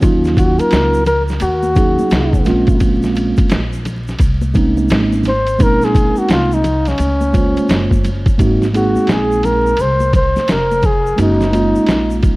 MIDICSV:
0, 0, Header, 1, 6, 480
1, 0, Start_track
1, 0, Tempo, 697674
1, 14, Time_signature, 4, 2, 24, 8
1, 8505, End_track
2, 0, Start_track
2, 0, Title_t, "Flugelhorn"
2, 0, Program_c, 0, 56
2, 263, Note_on_c, 0, 66, 84
2, 409, Note_on_c, 0, 70, 99
2, 419, Note_off_c, 0, 66, 0
2, 731, Note_off_c, 0, 70, 0
2, 736, Note_on_c, 0, 70, 88
2, 843, Note_off_c, 0, 70, 0
2, 977, Note_on_c, 0, 66, 83
2, 1668, Note_off_c, 0, 66, 0
2, 3634, Note_on_c, 0, 72, 100
2, 3871, Note_on_c, 0, 70, 112
2, 3881, Note_off_c, 0, 72, 0
2, 4023, Note_on_c, 0, 68, 98
2, 4033, Note_off_c, 0, 70, 0
2, 4256, Note_on_c, 0, 66, 85
2, 4266, Note_off_c, 0, 68, 0
2, 4340, Note_off_c, 0, 66, 0
2, 4347, Note_on_c, 0, 65, 87
2, 4499, Note_on_c, 0, 63, 85
2, 4510, Note_off_c, 0, 65, 0
2, 4734, Note_on_c, 0, 61, 82
2, 4744, Note_off_c, 0, 63, 0
2, 5538, Note_off_c, 0, 61, 0
2, 6030, Note_on_c, 0, 66, 83
2, 6269, Note_on_c, 0, 68, 95
2, 6279, Note_off_c, 0, 66, 0
2, 6503, Note_on_c, 0, 70, 94
2, 6513, Note_off_c, 0, 68, 0
2, 6751, Note_on_c, 0, 72, 100
2, 6761, Note_off_c, 0, 70, 0
2, 6982, Note_off_c, 0, 72, 0
2, 6991, Note_on_c, 0, 72, 93
2, 7232, Note_on_c, 0, 70, 100
2, 7242, Note_off_c, 0, 72, 0
2, 7471, Note_on_c, 0, 68, 90
2, 7481, Note_off_c, 0, 70, 0
2, 7702, Note_off_c, 0, 68, 0
2, 7717, Note_on_c, 0, 63, 85
2, 8398, Note_off_c, 0, 63, 0
2, 8505, End_track
3, 0, Start_track
3, 0, Title_t, "Tine electric piano"
3, 0, Program_c, 1, 4
3, 4, Note_on_c, 1, 54, 82
3, 8, Note_on_c, 1, 58, 74
3, 13, Note_on_c, 1, 61, 78
3, 17, Note_on_c, 1, 63, 73
3, 22, Note_on_c, 1, 65, 96
3, 691, Note_off_c, 1, 54, 0
3, 694, Note_off_c, 1, 58, 0
3, 696, Note_off_c, 1, 61, 0
3, 698, Note_off_c, 1, 63, 0
3, 700, Note_off_c, 1, 65, 0
3, 1204, Note_on_c, 1, 54, 65
3, 1209, Note_on_c, 1, 58, 65
3, 1213, Note_on_c, 1, 61, 56
3, 1219, Note_on_c, 1, 63, 65
3, 1221, Note_on_c, 1, 68, 75
3, 1681, Note_off_c, 1, 58, 0
3, 1686, Note_on_c, 1, 56, 90
3, 1689, Note_off_c, 1, 54, 0
3, 1689, Note_off_c, 1, 61, 0
3, 1689, Note_on_c, 1, 58, 83
3, 1694, Note_on_c, 1, 60, 77
3, 1696, Note_off_c, 1, 63, 0
3, 1697, Note_on_c, 1, 61, 77
3, 1698, Note_off_c, 1, 68, 0
3, 1704, Note_on_c, 1, 65, 94
3, 2471, Note_off_c, 1, 56, 0
3, 2472, Note_off_c, 1, 58, 0
3, 2474, Note_off_c, 1, 60, 0
3, 2476, Note_off_c, 1, 61, 0
3, 2479, Note_off_c, 1, 65, 0
3, 3123, Note_on_c, 1, 56, 79
3, 3128, Note_on_c, 1, 58, 76
3, 3132, Note_on_c, 1, 60, 74
3, 3136, Note_on_c, 1, 61, 72
3, 3143, Note_on_c, 1, 63, 86
3, 3636, Note_off_c, 1, 56, 0
3, 3639, Note_off_c, 1, 58, 0
3, 3640, Note_off_c, 1, 60, 0
3, 3642, Note_off_c, 1, 61, 0
3, 3646, Note_off_c, 1, 63, 0
3, 3843, Note_on_c, 1, 56, 71
3, 3846, Note_on_c, 1, 58, 68
3, 3852, Note_on_c, 1, 60, 66
3, 3853, Note_on_c, 1, 61, 66
3, 3860, Note_on_c, 1, 63, 76
3, 4531, Note_off_c, 1, 56, 0
3, 4532, Note_off_c, 1, 58, 0
3, 4535, Note_off_c, 1, 60, 0
3, 4536, Note_off_c, 1, 61, 0
3, 4539, Note_off_c, 1, 63, 0
3, 5041, Note_on_c, 1, 56, 67
3, 5047, Note_on_c, 1, 58, 59
3, 5051, Note_on_c, 1, 72, 59
3, 5055, Note_on_c, 1, 61, 62
3, 5058, Note_on_c, 1, 65, 69
3, 5555, Note_off_c, 1, 56, 0
3, 5558, Note_off_c, 1, 58, 0
3, 5560, Note_off_c, 1, 72, 0
3, 5562, Note_off_c, 1, 61, 0
3, 5564, Note_off_c, 1, 65, 0
3, 5764, Note_on_c, 1, 56, 74
3, 5766, Note_on_c, 1, 58, 77
3, 5773, Note_on_c, 1, 60, 76
3, 5776, Note_on_c, 1, 63, 75
3, 5780, Note_on_c, 1, 66, 87
3, 5955, Note_off_c, 1, 56, 0
3, 5956, Note_off_c, 1, 58, 0
3, 5960, Note_off_c, 1, 60, 0
3, 5961, Note_off_c, 1, 63, 0
3, 5963, Note_off_c, 1, 66, 0
3, 6005, Note_on_c, 1, 56, 67
3, 6009, Note_on_c, 1, 58, 61
3, 6015, Note_on_c, 1, 60, 64
3, 6018, Note_on_c, 1, 63, 59
3, 6022, Note_on_c, 1, 68, 76
3, 6692, Note_off_c, 1, 56, 0
3, 6694, Note_off_c, 1, 58, 0
3, 6697, Note_off_c, 1, 60, 0
3, 6698, Note_off_c, 1, 63, 0
3, 6701, Note_off_c, 1, 68, 0
3, 7682, Note_on_c, 1, 56, 66
3, 7687, Note_on_c, 1, 58, 63
3, 7691, Note_on_c, 1, 61, 62
3, 7697, Note_on_c, 1, 63, 65
3, 7701, Note_on_c, 1, 66, 75
3, 7874, Note_off_c, 1, 56, 0
3, 7877, Note_off_c, 1, 58, 0
3, 7878, Note_off_c, 1, 61, 0
3, 7881, Note_off_c, 1, 63, 0
3, 7884, Note_off_c, 1, 66, 0
3, 7923, Note_on_c, 1, 56, 65
3, 7926, Note_on_c, 1, 58, 63
3, 7933, Note_on_c, 1, 61, 62
3, 7936, Note_on_c, 1, 63, 63
3, 7943, Note_on_c, 1, 65, 75
3, 8505, Note_off_c, 1, 56, 0
3, 8505, Note_off_c, 1, 58, 0
3, 8505, Note_off_c, 1, 61, 0
3, 8505, Note_off_c, 1, 63, 0
3, 8505, Note_off_c, 1, 65, 0
3, 8505, End_track
4, 0, Start_track
4, 0, Title_t, "Upright bass"
4, 0, Program_c, 2, 32
4, 18, Note_on_c, 2, 39, 110
4, 387, Note_off_c, 2, 39, 0
4, 497, Note_on_c, 2, 37, 90
4, 952, Note_off_c, 2, 37, 0
4, 975, Note_on_c, 2, 39, 99
4, 1346, Note_off_c, 2, 39, 0
4, 1456, Note_on_c, 2, 36, 90
4, 1683, Note_off_c, 2, 36, 0
4, 1695, Note_on_c, 2, 34, 97
4, 2298, Note_off_c, 2, 34, 0
4, 2416, Note_on_c, 2, 34, 90
4, 2871, Note_off_c, 2, 34, 0
4, 2889, Note_on_c, 2, 36, 99
4, 3347, Note_off_c, 2, 36, 0
4, 3371, Note_on_c, 2, 32, 87
4, 3829, Note_off_c, 2, 32, 0
4, 3856, Note_on_c, 2, 34, 98
4, 4226, Note_off_c, 2, 34, 0
4, 4330, Note_on_c, 2, 36, 84
4, 4788, Note_off_c, 2, 36, 0
4, 4809, Note_on_c, 2, 37, 92
4, 5183, Note_off_c, 2, 37, 0
4, 5289, Note_on_c, 2, 30, 89
4, 5747, Note_off_c, 2, 30, 0
4, 5775, Note_on_c, 2, 32, 93
4, 6146, Note_off_c, 2, 32, 0
4, 6249, Note_on_c, 2, 34, 87
4, 6707, Note_off_c, 2, 34, 0
4, 6735, Note_on_c, 2, 36, 83
4, 7106, Note_off_c, 2, 36, 0
4, 7215, Note_on_c, 2, 29, 86
4, 7671, Note_off_c, 2, 29, 0
4, 7695, Note_on_c, 2, 30, 112
4, 8066, Note_off_c, 2, 30, 0
4, 8172, Note_on_c, 2, 34, 85
4, 8505, Note_off_c, 2, 34, 0
4, 8505, End_track
5, 0, Start_track
5, 0, Title_t, "Muted upright bass strokes"
5, 408, Note_on_c, 9, 29, 47
5, 477, Note_off_c, 9, 29, 0
5, 1370, Note_on_c, 9, 29, 44
5, 1439, Note_off_c, 9, 29, 0
5, 2326, Note_on_c, 9, 29, 47
5, 2395, Note_off_c, 9, 29, 0
5, 4241, Note_on_c, 9, 29, 46
5, 4310, Note_off_c, 9, 29, 0
5, 5202, Note_on_c, 9, 29, 43
5, 5271, Note_off_c, 9, 29, 0
5, 6158, Note_on_c, 9, 29, 42
5, 6227, Note_off_c, 9, 29, 0
5, 7128, Note_on_c, 9, 29, 43
5, 7197, Note_off_c, 9, 29, 0
5, 8084, Note_on_c, 9, 29, 46
5, 8152, Note_off_c, 9, 29, 0
5, 8505, End_track
6, 0, Start_track
6, 0, Title_t, "Drums"
6, 12, Note_on_c, 9, 82, 59
6, 16, Note_on_c, 9, 36, 101
6, 17, Note_on_c, 9, 51, 70
6, 81, Note_off_c, 9, 82, 0
6, 85, Note_off_c, 9, 36, 0
6, 86, Note_off_c, 9, 51, 0
6, 168, Note_on_c, 9, 82, 42
6, 175, Note_on_c, 9, 38, 34
6, 237, Note_off_c, 9, 82, 0
6, 244, Note_off_c, 9, 38, 0
6, 254, Note_on_c, 9, 36, 91
6, 256, Note_on_c, 9, 82, 39
6, 260, Note_on_c, 9, 51, 65
6, 323, Note_off_c, 9, 36, 0
6, 325, Note_off_c, 9, 82, 0
6, 329, Note_off_c, 9, 51, 0
6, 405, Note_on_c, 9, 82, 44
6, 409, Note_on_c, 9, 51, 47
6, 474, Note_off_c, 9, 82, 0
6, 477, Note_off_c, 9, 51, 0
6, 486, Note_on_c, 9, 44, 44
6, 486, Note_on_c, 9, 51, 62
6, 494, Note_on_c, 9, 82, 52
6, 501, Note_on_c, 9, 38, 102
6, 555, Note_off_c, 9, 44, 0
6, 555, Note_off_c, 9, 51, 0
6, 563, Note_off_c, 9, 82, 0
6, 570, Note_off_c, 9, 38, 0
6, 646, Note_on_c, 9, 82, 45
6, 714, Note_off_c, 9, 82, 0
6, 730, Note_on_c, 9, 64, 67
6, 730, Note_on_c, 9, 82, 45
6, 732, Note_on_c, 9, 51, 55
6, 799, Note_off_c, 9, 64, 0
6, 799, Note_off_c, 9, 82, 0
6, 801, Note_off_c, 9, 51, 0
6, 882, Note_on_c, 9, 82, 44
6, 895, Note_on_c, 9, 38, 29
6, 951, Note_off_c, 9, 82, 0
6, 962, Note_on_c, 9, 51, 69
6, 964, Note_off_c, 9, 38, 0
6, 967, Note_on_c, 9, 63, 50
6, 967, Note_on_c, 9, 82, 62
6, 1031, Note_off_c, 9, 51, 0
6, 1035, Note_off_c, 9, 63, 0
6, 1035, Note_off_c, 9, 82, 0
6, 1120, Note_on_c, 9, 63, 62
6, 1120, Note_on_c, 9, 82, 44
6, 1189, Note_off_c, 9, 63, 0
6, 1189, Note_off_c, 9, 82, 0
6, 1209, Note_on_c, 9, 64, 71
6, 1209, Note_on_c, 9, 82, 53
6, 1212, Note_on_c, 9, 36, 90
6, 1214, Note_on_c, 9, 51, 64
6, 1277, Note_off_c, 9, 64, 0
6, 1277, Note_off_c, 9, 82, 0
6, 1281, Note_off_c, 9, 36, 0
6, 1283, Note_off_c, 9, 51, 0
6, 1367, Note_on_c, 9, 63, 59
6, 1367, Note_on_c, 9, 82, 44
6, 1436, Note_off_c, 9, 63, 0
6, 1436, Note_off_c, 9, 82, 0
6, 1448, Note_on_c, 9, 82, 59
6, 1453, Note_on_c, 9, 44, 54
6, 1453, Note_on_c, 9, 51, 76
6, 1462, Note_on_c, 9, 38, 109
6, 1517, Note_off_c, 9, 82, 0
6, 1521, Note_off_c, 9, 44, 0
6, 1521, Note_off_c, 9, 51, 0
6, 1531, Note_off_c, 9, 38, 0
6, 1602, Note_on_c, 9, 36, 81
6, 1610, Note_on_c, 9, 63, 62
6, 1610, Note_on_c, 9, 82, 47
6, 1671, Note_off_c, 9, 36, 0
6, 1679, Note_off_c, 9, 63, 0
6, 1679, Note_off_c, 9, 82, 0
6, 1686, Note_on_c, 9, 64, 63
6, 1686, Note_on_c, 9, 82, 45
6, 1693, Note_on_c, 9, 51, 53
6, 1700, Note_on_c, 9, 38, 35
6, 1754, Note_off_c, 9, 64, 0
6, 1754, Note_off_c, 9, 82, 0
6, 1762, Note_off_c, 9, 51, 0
6, 1769, Note_off_c, 9, 38, 0
6, 1836, Note_on_c, 9, 51, 41
6, 1842, Note_on_c, 9, 36, 101
6, 1844, Note_on_c, 9, 82, 44
6, 1905, Note_off_c, 9, 51, 0
6, 1911, Note_off_c, 9, 36, 0
6, 1913, Note_off_c, 9, 82, 0
6, 1927, Note_on_c, 9, 82, 60
6, 1929, Note_on_c, 9, 51, 74
6, 1932, Note_on_c, 9, 36, 97
6, 1996, Note_off_c, 9, 82, 0
6, 1997, Note_off_c, 9, 51, 0
6, 2001, Note_off_c, 9, 36, 0
6, 2082, Note_on_c, 9, 82, 45
6, 2091, Note_on_c, 9, 38, 33
6, 2151, Note_off_c, 9, 82, 0
6, 2159, Note_off_c, 9, 38, 0
6, 2169, Note_on_c, 9, 82, 40
6, 2178, Note_on_c, 9, 51, 65
6, 2238, Note_off_c, 9, 82, 0
6, 2247, Note_off_c, 9, 51, 0
6, 2317, Note_on_c, 9, 82, 44
6, 2324, Note_on_c, 9, 36, 89
6, 2328, Note_on_c, 9, 51, 48
6, 2386, Note_off_c, 9, 82, 0
6, 2393, Note_off_c, 9, 36, 0
6, 2397, Note_off_c, 9, 51, 0
6, 2405, Note_on_c, 9, 44, 42
6, 2405, Note_on_c, 9, 51, 61
6, 2410, Note_on_c, 9, 82, 54
6, 2419, Note_on_c, 9, 38, 114
6, 2473, Note_off_c, 9, 44, 0
6, 2473, Note_off_c, 9, 51, 0
6, 2479, Note_off_c, 9, 82, 0
6, 2488, Note_off_c, 9, 38, 0
6, 2564, Note_on_c, 9, 82, 48
6, 2633, Note_off_c, 9, 82, 0
6, 2651, Note_on_c, 9, 51, 57
6, 2654, Note_on_c, 9, 64, 66
6, 2654, Note_on_c, 9, 82, 49
6, 2719, Note_off_c, 9, 51, 0
6, 2723, Note_off_c, 9, 64, 0
6, 2723, Note_off_c, 9, 82, 0
6, 2805, Note_on_c, 9, 82, 44
6, 2813, Note_on_c, 9, 38, 30
6, 2874, Note_off_c, 9, 82, 0
6, 2880, Note_on_c, 9, 51, 67
6, 2882, Note_off_c, 9, 38, 0
6, 2887, Note_on_c, 9, 36, 82
6, 2892, Note_on_c, 9, 63, 46
6, 2892, Note_on_c, 9, 82, 67
6, 2949, Note_off_c, 9, 51, 0
6, 2956, Note_off_c, 9, 36, 0
6, 2961, Note_off_c, 9, 63, 0
6, 2961, Note_off_c, 9, 82, 0
6, 3038, Note_on_c, 9, 63, 64
6, 3038, Note_on_c, 9, 82, 44
6, 3107, Note_off_c, 9, 63, 0
6, 3107, Note_off_c, 9, 82, 0
6, 3127, Note_on_c, 9, 64, 70
6, 3127, Note_on_c, 9, 82, 52
6, 3131, Note_on_c, 9, 36, 88
6, 3134, Note_on_c, 9, 51, 67
6, 3196, Note_off_c, 9, 64, 0
6, 3196, Note_off_c, 9, 82, 0
6, 3200, Note_off_c, 9, 36, 0
6, 3203, Note_off_c, 9, 51, 0
6, 3283, Note_on_c, 9, 63, 62
6, 3283, Note_on_c, 9, 82, 45
6, 3352, Note_off_c, 9, 63, 0
6, 3352, Note_off_c, 9, 82, 0
6, 3363, Note_on_c, 9, 82, 65
6, 3374, Note_on_c, 9, 44, 56
6, 3374, Note_on_c, 9, 51, 75
6, 3383, Note_on_c, 9, 38, 105
6, 3432, Note_off_c, 9, 82, 0
6, 3442, Note_off_c, 9, 44, 0
6, 3442, Note_off_c, 9, 51, 0
6, 3452, Note_off_c, 9, 38, 0
6, 3526, Note_on_c, 9, 63, 62
6, 3526, Note_on_c, 9, 82, 44
6, 3595, Note_off_c, 9, 63, 0
6, 3595, Note_off_c, 9, 82, 0
6, 3602, Note_on_c, 9, 64, 63
6, 3602, Note_on_c, 9, 82, 44
6, 3614, Note_on_c, 9, 51, 55
6, 3621, Note_on_c, 9, 38, 35
6, 3671, Note_off_c, 9, 64, 0
6, 3671, Note_off_c, 9, 82, 0
6, 3683, Note_off_c, 9, 51, 0
6, 3690, Note_off_c, 9, 38, 0
6, 3760, Note_on_c, 9, 51, 43
6, 3766, Note_on_c, 9, 82, 42
6, 3829, Note_off_c, 9, 51, 0
6, 3835, Note_off_c, 9, 82, 0
6, 3849, Note_on_c, 9, 82, 58
6, 3852, Note_on_c, 9, 51, 70
6, 3853, Note_on_c, 9, 36, 100
6, 3918, Note_off_c, 9, 82, 0
6, 3921, Note_off_c, 9, 51, 0
6, 3922, Note_off_c, 9, 36, 0
6, 4003, Note_on_c, 9, 82, 43
6, 4013, Note_on_c, 9, 38, 34
6, 4072, Note_off_c, 9, 82, 0
6, 4082, Note_off_c, 9, 38, 0
6, 4092, Note_on_c, 9, 36, 92
6, 4094, Note_on_c, 9, 82, 41
6, 4097, Note_on_c, 9, 51, 60
6, 4160, Note_off_c, 9, 36, 0
6, 4163, Note_off_c, 9, 82, 0
6, 4166, Note_off_c, 9, 51, 0
6, 4238, Note_on_c, 9, 82, 44
6, 4306, Note_off_c, 9, 82, 0
6, 4324, Note_on_c, 9, 44, 42
6, 4324, Note_on_c, 9, 51, 62
6, 4330, Note_on_c, 9, 82, 55
6, 4339, Note_on_c, 9, 38, 109
6, 4393, Note_off_c, 9, 44, 0
6, 4393, Note_off_c, 9, 51, 0
6, 4399, Note_off_c, 9, 82, 0
6, 4408, Note_off_c, 9, 38, 0
6, 4484, Note_on_c, 9, 82, 46
6, 4553, Note_off_c, 9, 82, 0
6, 4569, Note_on_c, 9, 51, 57
6, 4570, Note_on_c, 9, 64, 66
6, 4570, Note_on_c, 9, 82, 49
6, 4638, Note_off_c, 9, 51, 0
6, 4639, Note_off_c, 9, 64, 0
6, 4639, Note_off_c, 9, 82, 0
6, 4716, Note_on_c, 9, 51, 39
6, 4723, Note_on_c, 9, 82, 41
6, 4734, Note_on_c, 9, 38, 30
6, 4784, Note_off_c, 9, 51, 0
6, 4792, Note_off_c, 9, 82, 0
6, 4801, Note_on_c, 9, 51, 72
6, 4803, Note_off_c, 9, 38, 0
6, 4814, Note_on_c, 9, 63, 46
6, 4814, Note_on_c, 9, 82, 65
6, 4870, Note_off_c, 9, 51, 0
6, 4883, Note_off_c, 9, 63, 0
6, 4883, Note_off_c, 9, 82, 0
6, 4960, Note_on_c, 9, 63, 64
6, 4960, Note_on_c, 9, 82, 45
6, 5029, Note_off_c, 9, 63, 0
6, 5029, Note_off_c, 9, 82, 0
6, 5050, Note_on_c, 9, 64, 72
6, 5050, Note_on_c, 9, 82, 52
6, 5051, Note_on_c, 9, 36, 86
6, 5055, Note_on_c, 9, 51, 68
6, 5119, Note_off_c, 9, 64, 0
6, 5119, Note_off_c, 9, 82, 0
6, 5120, Note_off_c, 9, 36, 0
6, 5123, Note_off_c, 9, 51, 0
6, 5207, Note_on_c, 9, 63, 65
6, 5207, Note_on_c, 9, 82, 42
6, 5209, Note_on_c, 9, 51, 42
6, 5276, Note_off_c, 9, 63, 0
6, 5276, Note_off_c, 9, 82, 0
6, 5278, Note_off_c, 9, 51, 0
6, 5291, Note_on_c, 9, 82, 59
6, 5293, Note_on_c, 9, 44, 53
6, 5293, Note_on_c, 9, 51, 77
6, 5302, Note_on_c, 9, 38, 112
6, 5360, Note_off_c, 9, 82, 0
6, 5362, Note_off_c, 9, 44, 0
6, 5362, Note_off_c, 9, 51, 0
6, 5371, Note_off_c, 9, 38, 0
6, 5442, Note_on_c, 9, 36, 82
6, 5453, Note_on_c, 9, 63, 60
6, 5453, Note_on_c, 9, 82, 46
6, 5511, Note_off_c, 9, 36, 0
6, 5522, Note_off_c, 9, 63, 0
6, 5522, Note_off_c, 9, 82, 0
6, 5533, Note_on_c, 9, 64, 59
6, 5533, Note_on_c, 9, 82, 45
6, 5535, Note_on_c, 9, 51, 55
6, 5602, Note_off_c, 9, 64, 0
6, 5602, Note_off_c, 9, 82, 0
6, 5604, Note_off_c, 9, 51, 0
6, 5682, Note_on_c, 9, 51, 41
6, 5683, Note_on_c, 9, 36, 97
6, 5692, Note_on_c, 9, 82, 43
6, 5751, Note_off_c, 9, 51, 0
6, 5752, Note_off_c, 9, 36, 0
6, 5761, Note_off_c, 9, 82, 0
6, 5773, Note_on_c, 9, 51, 69
6, 5774, Note_on_c, 9, 36, 98
6, 5776, Note_on_c, 9, 82, 56
6, 5842, Note_off_c, 9, 36, 0
6, 5842, Note_off_c, 9, 51, 0
6, 5845, Note_off_c, 9, 82, 0
6, 5930, Note_on_c, 9, 38, 33
6, 5934, Note_on_c, 9, 82, 45
6, 5999, Note_off_c, 9, 38, 0
6, 6002, Note_off_c, 9, 82, 0
6, 6016, Note_on_c, 9, 51, 60
6, 6020, Note_on_c, 9, 82, 40
6, 6085, Note_off_c, 9, 51, 0
6, 6089, Note_off_c, 9, 82, 0
6, 6164, Note_on_c, 9, 63, 46
6, 6164, Note_on_c, 9, 82, 44
6, 6233, Note_off_c, 9, 63, 0
6, 6233, Note_off_c, 9, 82, 0
6, 6241, Note_on_c, 9, 44, 40
6, 6241, Note_on_c, 9, 51, 58
6, 6256, Note_on_c, 9, 38, 105
6, 6256, Note_on_c, 9, 82, 51
6, 6310, Note_off_c, 9, 44, 0
6, 6310, Note_off_c, 9, 51, 0
6, 6324, Note_off_c, 9, 38, 0
6, 6325, Note_off_c, 9, 82, 0
6, 6410, Note_on_c, 9, 82, 44
6, 6479, Note_off_c, 9, 82, 0
6, 6489, Note_on_c, 9, 51, 56
6, 6500, Note_on_c, 9, 64, 60
6, 6500, Note_on_c, 9, 82, 45
6, 6558, Note_off_c, 9, 51, 0
6, 6568, Note_off_c, 9, 64, 0
6, 6568, Note_off_c, 9, 82, 0
6, 6649, Note_on_c, 9, 82, 40
6, 6718, Note_off_c, 9, 82, 0
6, 6720, Note_on_c, 9, 51, 71
6, 6734, Note_on_c, 9, 82, 61
6, 6789, Note_off_c, 9, 51, 0
6, 6803, Note_off_c, 9, 82, 0
6, 6883, Note_on_c, 9, 63, 58
6, 6883, Note_on_c, 9, 82, 40
6, 6951, Note_off_c, 9, 63, 0
6, 6951, Note_off_c, 9, 82, 0
6, 6971, Note_on_c, 9, 36, 85
6, 6972, Note_on_c, 9, 51, 61
6, 6972, Note_on_c, 9, 64, 68
6, 6972, Note_on_c, 9, 82, 51
6, 7040, Note_off_c, 9, 36, 0
6, 7041, Note_off_c, 9, 51, 0
6, 7041, Note_off_c, 9, 64, 0
6, 7041, Note_off_c, 9, 82, 0
6, 7129, Note_on_c, 9, 63, 63
6, 7129, Note_on_c, 9, 82, 44
6, 7133, Note_on_c, 9, 38, 35
6, 7197, Note_off_c, 9, 63, 0
6, 7197, Note_off_c, 9, 82, 0
6, 7202, Note_off_c, 9, 38, 0
6, 7209, Note_on_c, 9, 44, 53
6, 7209, Note_on_c, 9, 51, 78
6, 7211, Note_on_c, 9, 82, 59
6, 7218, Note_on_c, 9, 38, 117
6, 7278, Note_off_c, 9, 44, 0
6, 7278, Note_off_c, 9, 51, 0
6, 7279, Note_off_c, 9, 82, 0
6, 7287, Note_off_c, 9, 38, 0
6, 7372, Note_on_c, 9, 63, 60
6, 7372, Note_on_c, 9, 82, 44
6, 7441, Note_off_c, 9, 63, 0
6, 7441, Note_off_c, 9, 82, 0
6, 7447, Note_on_c, 9, 64, 59
6, 7447, Note_on_c, 9, 82, 43
6, 7449, Note_on_c, 9, 51, 50
6, 7453, Note_on_c, 9, 36, 85
6, 7515, Note_off_c, 9, 64, 0
6, 7515, Note_off_c, 9, 82, 0
6, 7518, Note_off_c, 9, 51, 0
6, 7522, Note_off_c, 9, 36, 0
6, 7612, Note_on_c, 9, 82, 45
6, 7681, Note_off_c, 9, 82, 0
6, 7691, Note_on_c, 9, 51, 75
6, 7695, Note_on_c, 9, 82, 57
6, 7760, Note_off_c, 9, 51, 0
6, 7764, Note_off_c, 9, 82, 0
6, 7848, Note_on_c, 9, 38, 34
6, 7849, Note_on_c, 9, 82, 41
6, 7917, Note_off_c, 9, 38, 0
6, 7918, Note_off_c, 9, 82, 0
6, 7934, Note_on_c, 9, 51, 60
6, 7940, Note_on_c, 9, 82, 42
6, 8003, Note_off_c, 9, 51, 0
6, 8009, Note_off_c, 9, 82, 0
6, 8087, Note_on_c, 9, 63, 41
6, 8087, Note_on_c, 9, 82, 44
6, 8156, Note_off_c, 9, 63, 0
6, 8156, Note_off_c, 9, 82, 0
6, 8163, Note_on_c, 9, 44, 41
6, 8163, Note_on_c, 9, 51, 59
6, 8178, Note_on_c, 9, 38, 111
6, 8178, Note_on_c, 9, 82, 54
6, 8232, Note_off_c, 9, 44, 0
6, 8232, Note_off_c, 9, 51, 0
6, 8247, Note_off_c, 9, 38, 0
6, 8247, Note_off_c, 9, 82, 0
6, 8327, Note_on_c, 9, 82, 46
6, 8396, Note_off_c, 9, 82, 0
6, 8412, Note_on_c, 9, 51, 52
6, 8415, Note_on_c, 9, 36, 86
6, 8417, Note_on_c, 9, 64, 66
6, 8417, Note_on_c, 9, 82, 46
6, 8480, Note_off_c, 9, 51, 0
6, 8484, Note_off_c, 9, 36, 0
6, 8485, Note_off_c, 9, 64, 0
6, 8485, Note_off_c, 9, 82, 0
6, 8505, End_track
0, 0, End_of_file